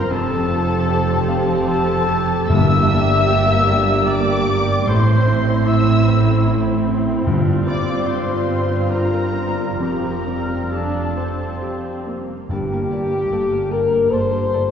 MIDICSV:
0, 0, Header, 1, 11, 480
1, 0, Start_track
1, 0, Tempo, 779221
1, 71, Time_signature, 3, 2, 24, 8
1, 1032, Tempo, 832178
1, 1512, Tempo, 794702
1, 4872, Tempo, 831025
1, 5352, Tempo, 898204
1, 7272, Tempo, 814111
1, 8578, End_track
2, 0, Start_track
2, 0, Title_t, "Flute"
2, 0, Program_c, 0, 73
2, 0, Note_on_c, 0, 82, 104
2, 70, Note_off_c, 0, 82, 0
2, 74, Note_on_c, 0, 81, 117
2, 848, Note_off_c, 0, 81, 0
2, 1035, Note_on_c, 0, 81, 114
2, 1518, Note_on_c, 0, 88, 127
2, 1527, Note_off_c, 0, 81, 0
2, 2458, Note_on_c, 0, 86, 108
2, 2467, Note_off_c, 0, 88, 0
2, 2937, Note_off_c, 0, 86, 0
2, 2941, Note_on_c, 0, 84, 107
2, 3424, Note_on_c, 0, 88, 101
2, 3433, Note_off_c, 0, 84, 0
2, 3909, Note_off_c, 0, 88, 0
2, 4628, Note_on_c, 0, 86, 84
2, 4869, Note_on_c, 0, 84, 75
2, 4877, Note_off_c, 0, 86, 0
2, 5353, Note_on_c, 0, 82, 85
2, 5361, Note_off_c, 0, 84, 0
2, 5829, Note_off_c, 0, 82, 0
2, 5832, Note_on_c, 0, 82, 83
2, 6324, Note_on_c, 0, 81, 62
2, 6332, Note_off_c, 0, 82, 0
2, 7042, Note_off_c, 0, 81, 0
2, 7268, Note_on_c, 0, 79, 77
2, 7991, Note_on_c, 0, 82, 82
2, 8000, Note_off_c, 0, 79, 0
2, 8234, Note_on_c, 0, 84, 87
2, 8242, Note_off_c, 0, 82, 0
2, 8578, Note_off_c, 0, 84, 0
2, 8578, End_track
3, 0, Start_track
3, 0, Title_t, "Violin section"
3, 0, Program_c, 1, 48
3, 0, Note_on_c, 1, 82, 105
3, 64, Note_on_c, 1, 81, 115
3, 71, Note_off_c, 1, 82, 0
3, 1010, Note_off_c, 1, 81, 0
3, 1034, Note_on_c, 1, 81, 127
3, 1503, Note_off_c, 1, 81, 0
3, 1512, Note_on_c, 1, 88, 120
3, 2459, Note_off_c, 1, 88, 0
3, 2460, Note_on_c, 1, 86, 127
3, 2936, Note_on_c, 1, 84, 114
3, 2944, Note_off_c, 1, 86, 0
3, 3423, Note_off_c, 1, 84, 0
3, 3426, Note_on_c, 1, 88, 121
3, 3910, Note_off_c, 1, 88, 0
3, 4627, Note_on_c, 1, 86, 104
3, 4854, Note_off_c, 1, 86, 0
3, 4869, Note_on_c, 1, 84, 93
3, 5351, Note_off_c, 1, 84, 0
3, 5351, Note_on_c, 1, 82, 109
3, 5833, Note_off_c, 1, 82, 0
3, 5841, Note_on_c, 1, 82, 84
3, 6316, Note_off_c, 1, 82, 0
3, 6327, Note_on_c, 1, 81, 73
3, 7043, Note_off_c, 1, 81, 0
3, 7280, Note_on_c, 1, 81, 61
3, 7327, Note_off_c, 1, 81, 0
3, 7520, Note_on_c, 1, 81, 62
3, 7568, Note_off_c, 1, 81, 0
3, 7756, Note_on_c, 1, 81, 57
3, 7803, Note_off_c, 1, 81, 0
3, 7998, Note_on_c, 1, 81, 60
3, 8045, Note_off_c, 1, 81, 0
3, 8234, Note_on_c, 1, 81, 59
3, 8281, Note_off_c, 1, 81, 0
3, 8472, Note_on_c, 1, 81, 56
3, 8519, Note_off_c, 1, 81, 0
3, 8578, End_track
4, 0, Start_track
4, 0, Title_t, "Violin section"
4, 0, Program_c, 2, 48
4, 0, Note_on_c, 2, 70, 99
4, 62, Note_on_c, 2, 69, 115
4, 75, Note_off_c, 2, 70, 0
4, 1028, Note_off_c, 2, 69, 0
4, 1036, Note_on_c, 2, 69, 101
4, 1505, Note_off_c, 2, 69, 0
4, 1508, Note_on_c, 2, 76, 124
4, 2457, Note_off_c, 2, 76, 0
4, 2459, Note_on_c, 2, 74, 94
4, 2941, Note_on_c, 2, 72, 105
4, 2944, Note_off_c, 2, 74, 0
4, 3416, Note_off_c, 2, 72, 0
4, 3428, Note_on_c, 2, 76, 100
4, 3911, Note_off_c, 2, 76, 0
4, 4637, Note_on_c, 2, 74, 105
4, 4859, Note_off_c, 2, 74, 0
4, 4876, Note_on_c, 2, 72, 83
4, 5354, Note_off_c, 2, 72, 0
4, 5358, Note_on_c, 2, 70, 75
4, 5823, Note_off_c, 2, 70, 0
4, 5829, Note_on_c, 2, 70, 72
4, 6310, Note_off_c, 2, 70, 0
4, 6318, Note_on_c, 2, 69, 59
4, 7038, Note_off_c, 2, 69, 0
4, 7272, Note_on_c, 2, 74, 62
4, 7319, Note_off_c, 2, 74, 0
4, 7512, Note_on_c, 2, 74, 51
4, 7560, Note_off_c, 2, 74, 0
4, 7743, Note_on_c, 2, 74, 53
4, 7790, Note_off_c, 2, 74, 0
4, 7991, Note_on_c, 2, 74, 56
4, 8038, Note_off_c, 2, 74, 0
4, 8231, Note_on_c, 2, 74, 53
4, 8278, Note_off_c, 2, 74, 0
4, 8468, Note_on_c, 2, 74, 54
4, 8515, Note_off_c, 2, 74, 0
4, 8578, End_track
5, 0, Start_track
5, 0, Title_t, "Oboe"
5, 0, Program_c, 3, 68
5, 0, Note_on_c, 3, 70, 94
5, 74, Note_on_c, 3, 69, 110
5, 83, Note_off_c, 3, 70, 0
5, 864, Note_off_c, 3, 69, 0
5, 1036, Note_on_c, 3, 69, 110
5, 1491, Note_off_c, 3, 69, 0
5, 1494, Note_on_c, 3, 76, 122
5, 2452, Note_on_c, 3, 74, 95
5, 2461, Note_off_c, 3, 76, 0
5, 2940, Note_off_c, 3, 74, 0
5, 2950, Note_on_c, 3, 72, 111
5, 3418, Note_on_c, 3, 76, 97
5, 3427, Note_off_c, 3, 72, 0
5, 3906, Note_off_c, 3, 76, 0
5, 4633, Note_on_c, 3, 74, 105
5, 4867, Note_on_c, 3, 72, 83
5, 4876, Note_off_c, 3, 74, 0
5, 5354, Note_on_c, 3, 70, 77
5, 5362, Note_off_c, 3, 72, 0
5, 5828, Note_off_c, 3, 70, 0
5, 5831, Note_on_c, 3, 70, 83
5, 6319, Note_on_c, 3, 69, 67
5, 6327, Note_off_c, 3, 70, 0
5, 7039, Note_off_c, 3, 69, 0
5, 8578, End_track
6, 0, Start_track
6, 0, Title_t, "French horn section"
6, 0, Program_c, 4, 60
6, 70, Note_on_c, 4, 67, 100
6, 74, Note_on_c, 4, 60, 113
6, 1489, Note_off_c, 4, 67, 0
6, 1491, Note_off_c, 4, 60, 0
6, 1505, Note_on_c, 4, 58, 102
6, 1508, Note_on_c, 4, 67, 87
6, 2916, Note_off_c, 4, 58, 0
6, 2917, Note_off_c, 4, 67, 0
6, 2925, Note_on_c, 4, 57, 83
6, 2930, Note_on_c, 4, 64, 83
6, 4356, Note_off_c, 4, 57, 0
6, 4359, Note_off_c, 4, 64, 0
6, 4380, Note_on_c, 4, 65, 92
6, 4381, Note_on_c, 4, 55, 88
6, 7066, Note_off_c, 4, 55, 0
6, 7087, Note_off_c, 4, 65, 0
6, 7277, Note_on_c, 4, 67, 98
6, 7972, Note_off_c, 4, 67, 0
6, 7991, Note_on_c, 4, 70, 95
6, 8225, Note_on_c, 4, 72, 96
6, 8230, Note_off_c, 4, 70, 0
6, 8578, Note_off_c, 4, 72, 0
6, 8578, End_track
7, 0, Start_track
7, 0, Title_t, "Grand piano"
7, 0, Program_c, 5, 0
7, 0, Control_c, 5, 64, 127
7, 0, Note_on_c, 5, 60, 65
7, 0, Note_on_c, 5, 65, 80
7, 0, Note_on_c, 5, 72, 65
7, 64, Note_on_c, 5, 41, 86
7, 68, Note_off_c, 5, 60, 0
7, 82, Control_c, 5, 64, 0
7, 84, Note_off_c, 5, 65, 0
7, 88, Note_off_c, 5, 72, 0
7, 180, Control_c, 5, 64, 127
7, 302, Note_on_c, 5, 65, 67
7, 545, Note_on_c, 5, 67, 69
7, 688, Note_off_c, 5, 65, 0
7, 790, Note_on_c, 5, 77, 81
7, 933, Note_off_c, 5, 67, 0
7, 1032, Note_on_c, 5, 72, 73
7, 1176, Note_off_c, 5, 77, 0
7, 1269, Note_on_c, 5, 67, 78
7, 1418, Note_off_c, 5, 72, 0
7, 1486, Note_off_c, 5, 41, 0
7, 1510, Note_on_c, 5, 43, 80
7, 1511, Note_off_c, 5, 67, 0
7, 1523, Control_c, 5, 64, 0
7, 1628, Control_c, 5, 64, 127
7, 1744, Note_on_c, 5, 62, 74
7, 1978, Note_on_c, 5, 67, 72
7, 2124, Note_off_c, 5, 62, 0
7, 2215, Note_on_c, 5, 74, 75
7, 2360, Note_off_c, 5, 67, 0
7, 2454, Note_on_c, 5, 70, 78
7, 2600, Note_off_c, 5, 74, 0
7, 2698, Note_on_c, 5, 67, 59
7, 2844, Note_off_c, 5, 70, 0
7, 2919, Note_off_c, 5, 43, 0
7, 2940, Note_on_c, 5, 45, 80
7, 2943, Note_off_c, 5, 67, 0
7, 2955, Control_c, 5, 64, 0
7, 3063, Control_c, 5, 64, 127
7, 3179, Note_on_c, 5, 60, 69
7, 3419, Note_on_c, 5, 64, 58
7, 3569, Note_off_c, 5, 60, 0
7, 3671, Note_on_c, 5, 72, 72
7, 3810, Note_off_c, 5, 64, 0
7, 3910, Note_on_c, 5, 64, 74
7, 4056, Note_off_c, 5, 72, 0
7, 4151, Note_on_c, 5, 60, 62
7, 4294, Note_off_c, 5, 64, 0
7, 4363, Note_off_c, 5, 45, 0
7, 4385, Note_on_c, 5, 43, 81
7, 4390, Note_off_c, 5, 60, 0
7, 4400, Control_c, 5, 64, 0
7, 4497, Control_c, 5, 64, 127
7, 4629, Note_on_c, 5, 60, 58
7, 4862, Note_on_c, 5, 65, 55
7, 5012, Note_off_c, 5, 60, 0
7, 5109, Note_on_c, 5, 72, 60
7, 5248, Note_off_c, 5, 65, 0
7, 5353, Note_on_c, 5, 65, 58
7, 5494, Note_off_c, 5, 72, 0
7, 5591, Note_on_c, 5, 60, 49
7, 5735, Note_off_c, 5, 65, 0
7, 5810, Note_off_c, 5, 43, 0
7, 5834, Note_off_c, 5, 60, 0
7, 5834, Note_on_c, 5, 41, 63
7, 5844, Control_c, 5, 64, 0
7, 5949, Control_c, 5, 64, 127
7, 6082, Note_on_c, 5, 60, 55
7, 6320, Note_on_c, 5, 67, 45
7, 6468, Note_off_c, 5, 60, 0
7, 6565, Note_on_c, 5, 72, 54
7, 6704, Note_off_c, 5, 67, 0
7, 6804, Note_on_c, 5, 67, 56
7, 6945, Note_off_c, 5, 72, 0
7, 7041, Note_on_c, 5, 60, 45
7, 7184, Note_off_c, 5, 67, 0
7, 7251, Note_off_c, 5, 41, 0
7, 7272, Note_off_c, 5, 60, 0
7, 7274, Note_on_c, 5, 43, 62
7, 7284, Control_c, 5, 64, 0
7, 7390, Control_c, 5, 64, 127
7, 7403, Note_on_c, 5, 58, 51
7, 7523, Note_on_c, 5, 67, 51
7, 7591, Note_off_c, 5, 58, 0
7, 7649, Note_on_c, 5, 58, 41
7, 7711, Note_off_c, 5, 67, 0
7, 7761, Note_on_c, 5, 69, 54
7, 7833, Note_off_c, 5, 58, 0
7, 7874, Note_on_c, 5, 58, 46
7, 7949, Note_off_c, 5, 69, 0
7, 7992, Note_on_c, 5, 67, 52
7, 8065, Note_off_c, 5, 58, 0
7, 8104, Note_on_c, 5, 58, 46
7, 8183, Note_off_c, 5, 67, 0
7, 8224, Note_on_c, 5, 69, 54
7, 8299, Note_off_c, 5, 58, 0
7, 8355, Note_on_c, 5, 67, 46
7, 8419, Note_off_c, 5, 69, 0
7, 8473, Note_off_c, 5, 67, 0
7, 8479, Note_on_c, 5, 69, 50
7, 8578, Note_off_c, 5, 43, 0
7, 8578, Note_off_c, 5, 69, 0
7, 8578, End_track
8, 0, Start_track
8, 0, Title_t, "Viola section"
8, 0, Program_c, 6, 48
8, 69, Note_on_c, 6, 60, 83
8, 71, Note_on_c, 6, 67, 85
8, 1488, Note_off_c, 6, 60, 0
8, 1508, Note_on_c, 6, 58, 81
8, 2917, Note_off_c, 6, 58, 0
8, 2919, Note_off_c, 6, 67, 0
8, 2941, Note_on_c, 6, 64, 89
8, 2942, Note_on_c, 6, 60, 87
8, 4388, Note_off_c, 6, 64, 0
8, 4389, Note_on_c, 6, 65, 86
8, 5811, Note_off_c, 6, 60, 0
8, 5812, Note_off_c, 6, 65, 0
8, 5837, Note_on_c, 6, 67, 65
8, 5838, Note_on_c, 6, 60, 61
8, 6267, Note_off_c, 6, 60, 0
8, 6275, Note_off_c, 6, 67, 0
8, 6326, Note_on_c, 6, 62, 91
8, 6547, Note_off_c, 6, 62, 0
8, 6567, Note_on_c, 6, 60, 74
8, 7042, Note_on_c, 6, 58, 65
8, 7043, Note_off_c, 6, 60, 0
8, 7271, Note_off_c, 6, 58, 0
8, 7278, Note_on_c, 6, 58, 59
8, 7325, Note_off_c, 6, 58, 0
8, 7515, Note_on_c, 6, 58, 52
8, 7562, Note_off_c, 6, 58, 0
8, 7754, Note_on_c, 6, 58, 62
8, 7802, Note_off_c, 6, 58, 0
8, 7990, Note_on_c, 6, 58, 62
8, 8037, Note_off_c, 6, 58, 0
8, 8235, Note_on_c, 6, 58, 55
8, 8283, Note_off_c, 6, 58, 0
8, 8469, Note_on_c, 6, 58, 50
8, 8517, Note_off_c, 6, 58, 0
8, 8578, End_track
9, 0, Start_track
9, 0, Title_t, "Cello section"
9, 0, Program_c, 7, 48
9, 72, Note_on_c, 7, 41, 88
9, 1511, Note_on_c, 7, 43, 107
9, 1513, Note_off_c, 7, 41, 0
9, 2919, Note_off_c, 7, 43, 0
9, 2941, Note_on_c, 7, 45, 97
9, 4364, Note_off_c, 7, 45, 0
9, 4388, Note_on_c, 7, 43, 86
9, 5811, Note_off_c, 7, 43, 0
9, 5829, Note_on_c, 7, 41, 70
9, 7158, Note_off_c, 7, 41, 0
9, 7271, Note_on_c, 7, 43, 75
9, 7698, Note_off_c, 7, 43, 0
9, 7753, Note_on_c, 7, 43, 69
9, 8174, Note_off_c, 7, 43, 0
9, 8231, Note_on_c, 7, 43, 74
9, 8578, Note_off_c, 7, 43, 0
9, 8578, End_track
10, 0, Start_track
10, 0, Title_t, "Timpani"
10, 0, Program_c, 8, 47
10, 1505, Note_on_c, 8, 43, 101
10, 2194, Note_off_c, 8, 43, 0
10, 4387, Note_on_c, 8, 43, 91
10, 5083, Note_off_c, 8, 43, 0
10, 7271, Note_on_c, 8, 43, 74
10, 7969, Note_off_c, 8, 43, 0
10, 8578, End_track
11, 0, Start_track
11, 0, Title_t, "Double bass section"
11, 0, Program_c, 10, 48
11, 74, Note_on_c, 10, 29, 106
11, 1509, Note_on_c, 10, 31, 106
11, 1514, Note_off_c, 10, 29, 0
11, 2918, Note_off_c, 10, 31, 0
11, 2942, Note_on_c, 10, 33, 97
11, 4364, Note_off_c, 10, 33, 0
11, 4387, Note_on_c, 10, 31, 84
11, 5811, Note_off_c, 10, 31, 0
11, 5834, Note_on_c, 10, 29, 67
11, 7161, Note_off_c, 10, 29, 0
11, 7271, Note_on_c, 10, 31, 78
11, 7697, Note_off_c, 10, 31, 0
11, 7753, Note_on_c, 10, 31, 69
11, 8174, Note_off_c, 10, 31, 0
11, 8228, Note_on_c, 10, 31, 67
11, 8578, Note_off_c, 10, 31, 0
11, 8578, End_track
0, 0, End_of_file